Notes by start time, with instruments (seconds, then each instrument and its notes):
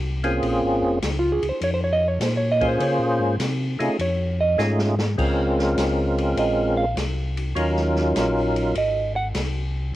Already playing: tonewheel organ C2
0.24 tonewheel organ A#3 C4 C#4 F4 G#4, ride
0.42 tonewheel organ A#1, ride
0.63 tonewheel organ G#1
0.82 tonewheel organ F1
1.02 tonewheel organ C#2, snare, hi-hat pedal, ride
1.19 hollow-body jazz guitar F4
1.32 hollow-body jazz guitar G#4
1.42 tonewheel organ C#2, ride
1.49 hollow-body jazz guitar C5
1.61 tonewheel organ F2, hollow-body jazz guitar C#5, ride
1.74 hollow-body jazz guitar C5
1.84 hollow-body jazz guitar C#5
1.93 hollow-body jazz guitar D#5
2.08 hollow-body jazz guitar C#5
2.20 tonewheel organ A#2, hollow-body jazz guitar C5, snare, hi-hat pedal, ride
2.37 hollow-body jazz guitar C#5
2.52 hollow-body jazz guitar D#5
2.61 tonewheel organ A#3 C#4 F4 G#4 C5, kick, ride
2.69 hollow-body jazz guitar C5
2.80 tonewheel organ C#3, hollow-body jazz guitar C#5, ride
2.99 tonewheel organ A#2
3.19 tonewheel organ G#2
3.40 tonewheel organ C3, snare, hi-hat pedal, ride
3.79 tonewheel organ C3 A3 C#4 D#4 F4 G#4, ride
3.99 tonewheel organ F2, hollow-body jazz guitar C#5, ride
4.41 hollow-body jazz guitar D#5
4.58 tonewheel organ G#2 A3 C#4 D#4 F4 G#4, snare, hi-hat pedal
4.79 snare
4.99 snare
5.18 tonewheel organ C#2 G#3 C4 C#4 F4 A#4, kick, crash
5.59 snare
5.77 tonewheel organ C#2, snare, hi-hat pedal, ride
6.18 ride
6.37 tonewheel organ A#1, hollow-body jazz guitar D#5, ride
6.77 hollow-body jazz guitar F5
6.96 tonewheel organ C2, snare, hi-hat pedal, ride
7.37 ride
7.55 tonewheel organ D#2 F#3 C#4 D#4 F4 A#4, ride
7.76 snare
7.96 snare
8.16 tonewheel organ A#1, snare, hi-hat pedal, ride
8.56 ride
8.75 tonewheel organ G#1, hollow-body jazz guitar D#5, ride
9.16 hollow-body jazz guitar F#5
9.35 tonewheel organ C2, snare, hi-hat pedal, ride